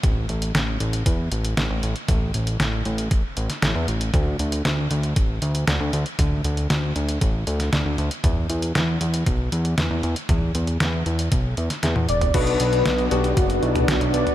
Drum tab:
CC |----------------|----------------|----------------|----------------|
HH |x-xxx-xxx-xxx-xx|x-xxx-xxx-xxx-xx|x-xxx-xxx-xxx-xx|x-xxx-xxx-xxx-xx|
SD |----o-------o---|----o------oo---|----o-------o---|----o------oo---|
T1 |----------------|----------------|----------------|----------------|
T2 |o---------------|o---------------|o---------------|o---------------|
BD |o-------o-------|o-------o-------|o-------o-------|o-------o-------|

CC |----------------|----------------|x---------------|
HH |x-xxx-xxx-xxx-xx|x-xxx-xxx-xxx-xx|xxxxxxxxxxxxxxxx|
SD |----o-------o---|----o------oo---|----o-------o---|
T1 |----------------|-------------o--|----------------|
T2 |o---------------|o--------------o|-----------o---o|
BD |o-------o-------|o-------o-------|o-------o-------|